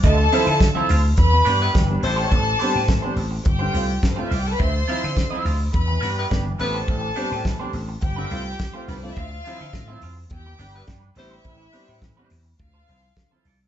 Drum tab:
HH |xoxoxoxo|xoxoxoxo|xoxoxoxo|xoxoxoxo|
SD |--o---o-|--o---o-|--o---o-|--o---o-|
BD |o-o-o-o-|o-o-o-o-|o-o-o-o-|o-o-o-o-|

HH |xoxoxoxo|xoxoxoxo|
SD |--o---o-|--o---o-|
BD |o-o-o-o-|o-o-o-o-|